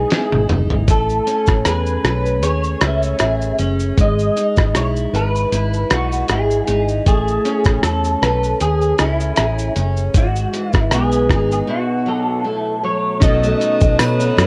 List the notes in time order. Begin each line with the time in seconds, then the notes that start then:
Already playing: G#3 D#4 E4 G#4 B4
0.10 E4, snare, closed hi-hat
0.32 G#1, high tom
0.49 F#1 D#4, closed hi-hat, mid tom
0.70 G#1, floor tom
0.88 A1 A3 A4, kick, closed hi-hat, shaker
1.10 shaker
1.27 C#4, closed hi-hat, shaker
1.47 A1, kick, cross-stick, shaker
1.65 E2 G#4 B4, cross-stick, closed hi-hat, shaker
1.86 shaker
2.04 B1 B4, cross-stick, closed hi-hat, shaker
2.26 shaker
2.43 D#2 G#4 C#5, closed hi-hat, shaker
2.64 shaker
2.81 C#2 C#4 E5, cross-stick, closed hi-hat, shaker
3.03 shaker
3.19 A1 G#4, cross-stick, closed hi-hat, shaker
3.41 shaker
3.59 F#1 C#4, closed hi-hat, shaker
3.79 shaker
3.97 G#1 G#3 D#5, kick, closed hi-hat, shaker
4.19 shaker
4.36 D#4, closed hi-hat, shaker
4.56 G#1, kick, cross-stick, shaker
4.75 B1 E4 C#5, cross-stick, closed hi-hat, shaker
4.96 shaker
5.13 G#1 B4, closed hi-hat, shaker
5.35 shaker
5.52 G#1 E4, closed hi-hat, shaker
5.73 shaker
5.90 B1 D#4 F#4, cross-stick, closed hi-hat, shaker
6.12 shaker
6.28 G#1 E4 G#4, cross-stick, closed hi-hat, shaker
6.51 shaker
6.67 G#1 D#4, closed hi-hat, shaker
6.88 shaker
7.06 A1 A3 G#4, kick, closed hi-hat, shaker
7.28 shaker
7.45 C#4, closed hi-hat, shaker
7.64 A1, kick, cross-stick, shaker
7.83 E2 A4, cross-stick, closed hi-hat, shaker
8.04 shaker
8.22 B1 B4, cross-stick, closed hi-hat, shaker
8.43 shaker
8.60 D#2 G#4, closed hi-hat, shaker
8.81 shaker
8.98 C#2 C#4 E4, cross-stick, closed hi-hat, shaker
9.20 shaker
9.36 A1 G#4, cross-stick, closed hi-hat, shaker
9.59 shaker
9.76 F#1 C#4, closed hi-hat, shaker
9.97 shaker
10.14 G#1 G#2 F#4, kick, closed hi-hat, shaker
10.36 shaker
10.53 E3, closed hi-hat, shaker
10.73 G#1 E4, kick, cross-stick, shaker
10.91 B1 B3 G#4, cross-stick, closed hi-hat, shaker
11.12 shaker
11.29 G#1 D#4, kick, cross-stick, closed hi-hat, shaker
11.51 G#4, shaker
11.67 B2 F#4
12.06 F#3 A4
12.44 A3 E4
12.84 F#3 C#5
13.20 B1 B2 C#4 D#4 F#4 A4 B4 D#5 A5 D#6, kick, closed hi-hat, shaker
13.43 A3, shaker
13.60 D#4, closed hi-hat, shaker
13.81 B1 A3, kick, shaker
13.99 B2 F#3 B4, cross-stick, closed hi-hat, tambourine, shaker
14.20 D#4, shaker
14.37 F#2 F#3, cross-stick, closed hi-hat, shaker